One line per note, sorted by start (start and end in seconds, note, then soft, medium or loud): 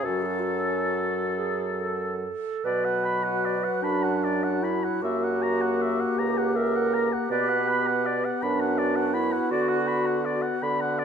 0.04 2.31 F#2 soft
0.04 2.26 F#3 soft
0.04 1.26 C#4 soft
0.04 0.23 F#4 soft
0.04 2.31 A4 soft
0.22 0.40 F#4 soft
0.22 0.26 G#4 soft
0.39 0.43 F4 soft
0.39 1.34 F#4 soft
1.37 1.82 G#4 soft
1.80 2.67 A4 soft
2.65 3.63 B2 soft
2.65 5.05 F#3 soft
2.65 5.03 F#4 soft
2.65 3.82 B4 medium
2.65 2.86 D5 soft
2.85 3.06 F#5 soft
3.05 3.25 B5 soft
3.24 3.46 F#5 soft
3.45 3.66 D5 soft
3.64 3.85 F#5 soft
3.82 4.82 F#2 soft
3.82 4.64 D4 soft
3.82 4.05 B5 soft
4.03 4.25 F#5 soft
4.24 4.45 D5 soft
4.44 4.65 F#5 soft
4.62 5.04 E4 soft
4.62 4.85 B5 soft
4.84 5.03 F#5 soft
5.02 5.99 F#2 soft
5.02 7.30 A#3 soft
5.02 6.20 F#4 medium
5.02 8.44 G4 soft
5.02 5.25 E5 soft
5.24 5.44 F#5 soft
5.42 5.63 A#5 soft
5.61 5.83 F#5 soft
5.82 6.02 E5 soft
6.00 6.20 F#5 soft
6.18 7.11 C#2 soft
6.18 6.57 G4 medium
6.18 6.39 A#5 soft
6.38 6.58 F#5 soft
6.56 7.13 A#4 medium
6.56 6.77 E5 soft
6.76 6.96 F#5 soft
6.94 7.14 A#5 soft
7.13 7.30 F#5 soft
7.30 8.25 B2 soft
7.30 11.05 B3 soft
7.30 8.15 B4 medium
7.30 7.51 D5 soft
7.49 7.70 F#5 soft
7.69 7.89 B5 soft
7.87 8.08 F#5 soft
8.06 8.26 D5 soft
8.25 8.44 F#5 soft
8.43 9.33 F#2 soft
8.43 9.16 D4 medium
8.43 11.05 F#4 soft
8.43 8.62 B5 soft
8.60 8.80 F#5 soft
8.78 8.97 D5 soft
8.96 9.16 F#5 soft
9.14 9.53 E4 medium
9.14 9.34 B5 soft
9.32 9.51 F#5 soft
9.51 10.45 D3 soft
9.51 10.63 F#4 medium
9.51 9.70 D5 soft
9.69 9.89 F#5 soft
9.87 10.08 B5 soft
10.06 10.27 F#5 soft
10.25 10.44 D5 soft
10.42 10.65 F#5 soft
10.63 11.05 D3 soft
10.63 10.82 B5 soft
10.81 11.00 F#5 soft
10.99 11.05 D5 soft